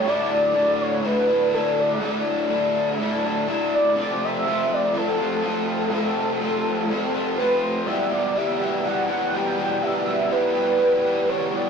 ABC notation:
X:1
M:4/4
L:1/8
Q:1/4=123
K:Edor
V:1 name="Soft synth lead"
d3 c B2 A d- | d z6 d- | d e2 d A4- | A6 B =c |
e d e2 f f g2 | e2 B4 c d |]
V:2 name="Overdriven electric guitar"
[A,,D,A,DE]2 [D,A,DE]2 [A,,D,A,DE] [A,DE] [D,A,DE]2 | [A,,D,A,DE]2 [D,A,DE]2 [A,,D,A,DE] [A,DE] [D,A,DE]2 | [=F,,=C,=F,A,=C=F]2 [F,A,CF]2 [F,,C,F,A,CF] [F,A,CF] [F,A,CF]2 | [=F,,=C,=F,A,=C=F]2 [F,A,CF]2 [F,,C,F,A,CF] [F,A,CF] [F,A,CF]2 |
[E,,B,,E,G,B,G] [E,G,B,G] [E,G,B,G] [E,,B,,E,G,B,G] [E,G,B,G] [E,G,B,G] [E,,B,,E,G,B,G] [E,G,B,G] | [E,,B,,E,G,B,G] [E,G,B,G] [E,G,B,G] [E,,B,,E,G,B,G] [E,G,B,G] [E,G,B,G] [E,,B,,E,G,B,G] [E,G,B,G] |]